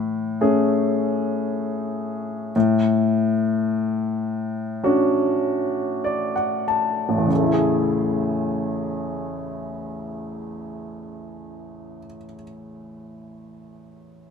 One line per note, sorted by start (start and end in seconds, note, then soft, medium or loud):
0.00 2.51 A2 soft
0.41 2.51 A3 soft
0.41 2.51 C#4 soft
0.41 2.52 G#4 soft
2.56 7.27 A2 soft
4.84 7.27 C#4 soft
4.84 7.27 D4 soft
4.84 7.27 F#4 soft
6.04 6.33 D5 soft
6.36 6.65 F#5 soft
6.68 7.27 A5 soft
7.09 11.98 A1 soft
7.17 12.06 E2 soft
7.27 12.16 C#3 soft
7.36 12.24 A3 soft
7.44 12.33 E4 soft
7.53 12.42 G#4 soft